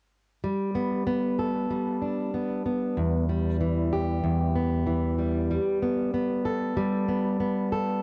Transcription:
0, 0, Header, 1, 2, 480
1, 0, Start_track
1, 0, Key_signature, 1, "major"
1, 0, Tempo, 632911
1, 336, Time_signature, 4, 2, 24, 8
1, 6085, End_track
2, 0, Start_track
2, 0, Title_t, "Steel-string acoustic guitar"
2, 0, Program_c, 0, 25
2, 333, Note_on_c, 0, 55, 65
2, 570, Note_on_c, 0, 59, 47
2, 808, Note_off_c, 0, 59, 0
2, 811, Note_on_c, 0, 59, 51
2, 1054, Note_on_c, 0, 69, 50
2, 1289, Note_off_c, 0, 55, 0
2, 1292, Note_on_c, 0, 55, 60
2, 1529, Note_on_c, 0, 62, 43
2, 1770, Note_off_c, 0, 59, 0
2, 1773, Note_on_c, 0, 59, 51
2, 2011, Note_off_c, 0, 59, 0
2, 2014, Note_on_c, 0, 59, 44
2, 2253, Note_on_c, 0, 40, 64
2, 2306, Note_off_c, 0, 62, 0
2, 2308, Note_off_c, 0, 69, 0
2, 2492, Note_off_c, 0, 59, 0
2, 2495, Note_off_c, 0, 55, 0
2, 2495, Note_on_c, 0, 55, 49
2, 2733, Note_on_c, 0, 52, 56
2, 2978, Note_on_c, 0, 67, 53
2, 3204, Note_off_c, 0, 40, 0
2, 3213, Note_on_c, 0, 40, 62
2, 3456, Note_on_c, 0, 59, 46
2, 3682, Note_off_c, 0, 52, 0
2, 3691, Note_on_c, 0, 52, 46
2, 3928, Note_off_c, 0, 55, 0
2, 3931, Note_on_c, 0, 55, 43
2, 4174, Note_off_c, 0, 52, 0
2, 4177, Note_off_c, 0, 55, 0
2, 4177, Note_on_c, 0, 55, 67
2, 4227, Note_off_c, 0, 40, 0
2, 4418, Note_off_c, 0, 59, 0
2, 4418, Note_on_c, 0, 59, 50
2, 4653, Note_off_c, 0, 59, 0
2, 4656, Note_on_c, 0, 59, 53
2, 4891, Note_off_c, 0, 67, 0
2, 4894, Note_on_c, 0, 69, 56
2, 5130, Note_off_c, 0, 55, 0
2, 5133, Note_on_c, 0, 55, 70
2, 5369, Note_off_c, 0, 59, 0
2, 5372, Note_on_c, 0, 59, 47
2, 5610, Note_off_c, 0, 59, 0
2, 5613, Note_on_c, 0, 59, 52
2, 5847, Note_off_c, 0, 69, 0
2, 5856, Note_on_c, 0, 69, 56
2, 6085, Note_off_c, 0, 55, 0
2, 6085, Note_off_c, 0, 59, 0
2, 6085, Note_off_c, 0, 69, 0
2, 6085, End_track
0, 0, End_of_file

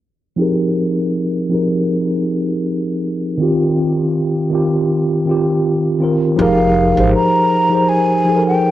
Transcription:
0, 0, Header, 1, 4, 480
1, 0, Start_track
1, 0, Key_signature, -4, "minor"
1, 0, Tempo, 750000
1, 245, Time_signature, 4, 2, 24, 8
1, 5574, End_track
2, 0, Start_track
2, 0, Title_t, "Flute"
2, 0, Program_c, 0, 73
2, 4100, Note_on_c, 0, 77, 96
2, 4547, Note_off_c, 0, 77, 0
2, 4575, Note_on_c, 0, 82, 108
2, 5049, Note_on_c, 0, 80, 101
2, 5059, Note_off_c, 0, 82, 0
2, 5421, Note_off_c, 0, 80, 0
2, 5425, Note_on_c, 0, 79, 97
2, 5574, Note_off_c, 0, 79, 0
2, 5574, End_track
3, 0, Start_track
3, 0, Title_t, "Tine electric piano"
3, 0, Program_c, 1, 4
3, 232, Note_on_c, 1, 53, 89
3, 239, Note_on_c, 1, 60, 94
3, 245, Note_on_c, 1, 63, 92
3, 252, Note_on_c, 1, 67, 94
3, 259, Note_on_c, 1, 68, 82
3, 267, Note_on_c, 1, 70, 103
3, 362, Control_c, 1, 64, 127
3, 684, Note_off_c, 1, 53, 0
3, 687, Note_off_c, 1, 60, 0
3, 691, Note_off_c, 1, 63, 0
3, 694, Note_off_c, 1, 67, 0
3, 698, Note_off_c, 1, 68, 0
3, 702, Note_off_c, 1, 70, 0
3, 954, Note_on_c, 1, 53, 72
3, 959, Note_on_c, 1, 60, 72
3, 967, Note_on_c, 1, 63, 65
3, 974, Note_on_c, 1, 67, 64
3, 981, Note_on_c, 1, 68, 62
3, 987, Note_on_c, 1, 70, 87
3, 1560, Note_off_c, 1, 53, 0
3, 1562, Note_off_c, 1, 60, 0
3, 1566, Note_off_c, 1, 63, 0
3, 1569, Note_off_c, 1, 67, 0
3, 1573, Note_off_c, 1, 68, 0
3, 1576, Note_off_c, 1, 70, 0
3, 2159, Note_on_c, 1, 51, 99
3, 2171, Note_on_c, 1, 60, 84
3, 2174, Control_c, 1, 64, 0
3, 2183, Note_on_c, 1, 65, 90
3, 2193, Note_on_c, 1, 67, 117
3, 2302, Control_c, 1, 64, 127
3, 2607, Note_off_c, 1, 51, 0
3, 2614, Note_off_c, 1, 60, 0
3, 2620, Note_off_c, 1, 65, 0
3, 2625, Note_off_c, 1, 67, 0
3, 2877, Note_on_c, 1, 51, 73
3, 2889, Note_on_c, 1, 60, 69
3, 2900, Note_on_c, 1, 65, 65
3, 2911, Note_on_c, 1, 67, 86
3, 3181, Note_off_c, 1, 51, 0
3, 3187, Note_off_c, 1, 60, 0
3, 3193, Note_off_c, 1, 65, 0
3, 3198, Note_off_c, 1, 67, 0
3, 3363, Note_on_c, 1, 51, 69
3, 3375, Note_on_c, 1, 60, 65
3, 3387, Note_on_c, 1, 65, 66
3, 3399, Note_on_c, 1, 67, 78
3, 3664, Note_off_c, 1, 51, 0
3, 3670, Note_off_c, 1, 60, 0
3, 3676, Note_off_c, 1, 65, 0
3, 3682, Note_off_c, 1, 67, 0
3, 3830, Note_on_c, 1, 51, 64
3, 3843, Note_on_c, 1, 60, 67
3, 3853, Note_on_c, 1, 65, 64
3, 3864, Note_on_c, 1, 70, 70
3, 3995, Note_off_c, 1, 51, 0
3, 4001, Note_off_c, 1, 60, 0
3, 4007, Note_off_c, 1, 65, 0
3, 4012, Note_off_c, 1, 70, 0
3, 4073, Note_on_c, 1, 53, 94
3, 4081, Note_on_c, 1, 63, 84
3, 4090, Note_on_c, 1, 67, 88
3, 4094, Control_c, 1, 64, 0
3, 4097, Note_on_c, 1, 68, 86
3, 4106, Note_on_c, 1, 70, 105
3, 4207, Control_c, 1, 64, 127
3, 4302, Note_off_c, 1, 53, 0
3, 4306, Note_off_c, 1, 63, 0
3, 4310, Note_off_c, 1, 67, 0
3, 4314, Note_off_c, 1, 68, 0
3, 4318, Note_off_c, 1, 70, 0
3, 4446, Note_on_c, 1, 53, 71
3, 4455, Note_on_c, 1, 63, 56
3, 4463, Note_on_c, 1, 67, 63
3, 4471, Note_on_c, 1, 68, 53
3, 4480, Note_on_c, 1, 72, 85
3, 4740, Note_off_c, 1, 53, 0
3, 4745, Note_off_c, 1, 63, 0
3, 4749, Note_off_c, 1, 67, 0
3, 4753, Note_off_c, 1, 68, 0
3, 4758, Note_off_c, 1, 72, 0
3, 4922, Note_on_c, 1, 53, 63
3, 4929, Note_on_c, 1, 63, 56
3, 4940, Note_on_c, 1, 67, 57
3, 4947, Note_on_c, 1, 68, 52
3, 4955, Note_on_c, 1, 72, 69
3, 5148, Note_off_c, 1, 53, 0
3, 5152, Note_off_c, 1, 63, 0
3, 5158, Note_off_c, 1, 67, 0
3, 5161, Note_off_c, 1, 68, 0
3, 5165, Note_off_c, 1, 72, 0
3, 5279, Note_on_c, 1, 53, 65
3, 5288, Note_on_c, 1, 63, 61
3, 5297, Note_on_c, 1, 67, 57
3, 5306, Note_on_c, 1, 68, 64
3, 5313, Note_on_c, 1, 69, 57
3, 5345, Note_off_c, 1, 69, 0
3, 5356, Note_on_c, 1, 70, 75
3, 5574, Note_off_c, 1, 53, 0
3, 5574, Note_off_c, 1, 63, 0
3, 5574, Note_off_c, 1, 67, 0
3, 5574, Note_off_c, 1, 68, 0
3, 5574, Note_off_c, 1, 70, 0
3, 5574, End_track
4, 0, Start_track
4, 0, Title_t, "Upright bass"
4, 0, Program_c, 2, 32
4, 4089, Note_on_c, 2, 29, 103
4, 4435, Note_off_c, 2, 29, 0
4, 4463, Note_on_c, 2, 32, 94
4, 4558, Note_off_c, 2, 32, 0
4, 5574, End_track
0, 0, End_of_file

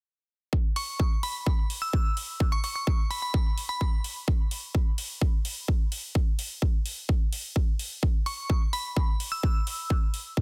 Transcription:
0, 0, Header, 1, 3, 480
1, 0, Start_track
1, 0, Tempo, 468750
1, 540, Time_signature, 4, 2, 24, 8
1, 10664, End_track
2, 0, Start_track
2, 0, Title_t, "Synth bell"
2, 0, Program_c, 0, 98
2, 780, Note_on_c, 0, 85, 83
2, 983, Note_off_c, 0, 85, 0
2, 1261, Note_on_c, 0, 83, 80
2, 1463, Note_off_c, 0, 83, 0
2, 1861, Note_on_c, 0, 88, 85
2, 2532, Note_off_c, 0, 88, 0
2, 2581, Note_on_c, 0, 85, 87
2, 2677, Note_off_c, 0, 85, 0
2, 2702, Note_on_c, 0, 85, 81
2, 2778, Note_off_c, 0, 85, 0
2, 2821, Note_on_c, 0, 85, 70
2, 2897, Note_off_c, 0, 85, 0
2, 3180, Note_on_c, 0, 83, 81
2, 3257, Note_off_c, 0, 83, 0
2, 3300, Note_on_c, 0, 83, 72
2, 3377, Note_off_c, 0, 83, 0
2, 3779, Note_on_c, 0, 83, 81
2, 3856, Note_off_c, 0, 83, 0
2, 3899, Note_on_c, 0, 83, 70
2, 3976, Note_off_c, 0, 83, 0
2, 8460, Note_on_c, 0, 85, 86
2, 8662, Note_off_c, 0, 85, 0
2, 8940, Note_on_c, 0, 83, 82
2, 9142, Note_off_c, 0, 83, 0
2, 9540, Note_on_c, 0, 88, 84
2, 10212, Note_off_c, 0, 88, 0
2, 10664, End_track
3, 0, Start_track
3, 0, Title_t, "Drums"
3, 540, Note_on_c, 9, 36, 106
3, 642, Note_off_c, 9, 36, 0
3, 780, Note_on_c, 9, 46, 96
3, 882, Note_off_c, 9, 46, 0
3, 1019, Note_on_c, 9, 36, 109
3, 1122, Note_off_c, 9, 36, 0
3, 1260, Note_on_c, 9, 46, 102
3, 1363, Note_off_c, 9, 46, 0
3, 1500, Note_on_c, 9, 36, 106
3, 1602, Note_off_c, 9, 36, 0
3, 1741, Note_on_c, 9, 46, 96
3, 1843, Note_off_c, 9, 46, 0
3, 1980, Note_on_c, 9, 36, 106
3, 2082, Note_off_c, 9, 36, 0
3, 2221, Note_on_c, 9, 46, 96
3, 2323, Note_off_c, 9, 46, 0
3, 2460, Note_on_c, 9, 36, 114
3, 2562, Note_off_c, 9, 36, 0
3, 2700, Note_on_c, 9, 46, 97
3, 2803, Note_off_c, 9, 46, 0
3, 2940, Note_on_c, 9, 36, 111
3, 3042, Note_off_c, 9, 36, 0
3, 3181, Note_on_c, 9, 46, 107
3, 3284, Note_off_c, 9, 46, 0
3, 3420, Note_on_c, 9, 36, 116
3, 3522, Note_off_c, 9, 36, 0
3, 3661, Note_on_c, 9, 46, 100
3, 3764, Note_off_c, 9, 46, 0
3, 3900, Note_on_c, 9, 36, 110
3, 4002, Note_off_c, 9, 36, 0
3, 4141, Note_on_c, 9, 46, 103
3, 4243, Note_off_c, 9, 46, 0
3, 4380, Note_on_c, 9, 36, 116
3, 4482, Note_off_c, 9, 36, 0
3, 4620, Note_on_c, 9, 46, 98
3, 4723, Note_off_c, 9, 46, 0
3, 4860, Note_on_c, 9, 36, 115
3, 4962, Note_off_c, 9, 36, 0
3, 5100, Note_on_c, 9, 46, 106
3, 5202, Note_off_c, 9, 46, 0
3, 5340, Note_on_c, 9, 36, 112
3, 5442, Note_off_c, 9, 36, 0
3, 5580, Note_on_c, 9, 46, 101
3, 5682, Note_off_c, 9, 46, 0
3, 5819, Note_on_c, 9, 36, 119
3, 5922, Note_off_c, 9, 36, 0
3, 6061, Note_on_c, 9, 46, 98
3, 6163, Note_off_c, 9, 46, 0
3, 6299, Note_on_c, 9, 36, 119
3, 6402, Note_off_c, 9, 36, 0
3, 6540, Note_on_c, 9, 46, 100
3, 6643, Note_off_c, 9, 46, 0
3, 6779, Note_on_c, 9, 36, 108
3, 6882, Note_off_c, 9, 36, 0
3, 7020, Note_on_c, 9, 46, 101
3, 7123, Note_off_c, 9, 46, 0
3, 7260, Note_on_c, 9, 36, 117
3, 7362, Note_off_c, 9, 36, 0
3, 7501, Note_on_c, 9, 46, 99
3, 7603, Note_off_c, 9, 46, 0
3, 7740, Note_on_c, 9, 36, 110
3, 7842, Note_off_c, 9, 36, 0
3, 7981, Note_on_c, 9, 46, 96
3, 8084, Note_off_c, 9, 46, 0
3, 8220, Note_on_c, 9, 36, 108
3, 8322, Note_off_c, 9, 36, 0
3, 8461, Note_on_c, 9, 46, 94
3, 8563, Note_off_c, 9, 46, 0
3, 8700, Note_on_c, 9, 36, 110
3, 8803, Note_off_c, 9, 36, 0
3, 8941, Note_on_c, 9, 46, 99
3, 9043, Note_off_c, 9, 46, 0
3, 9180, Note_on_c, 9, 36, 116
3, 9283, Note_off_c, 9, 36, 0
3, 9421, Note_on_c, 9, 46, 96
3, 9524, Note_off_c, 9, 46, 0
3, 9660, Note_on_c, 9, 36, 110
3, 9763, Note_off_c, 9, 36, 0
3, 9901, Note_on_c, 9, 46, 94
3, 10003, Note_off_c, 9, 46, 0
3, 10140, Note_on_c, 9, 36, 109
3, 10242, Note_off_c, 9, 36, 0
3, 10381, Note_on_c, 9, 46, 89
3, 10483, Note_off_c, 9, 46, 0
3, 10620, Note_on_c, 9, 36, 104
3, 10664, Note_off_c, 9, 36, 0
3, 10664, End_track
0, 0, End_of_file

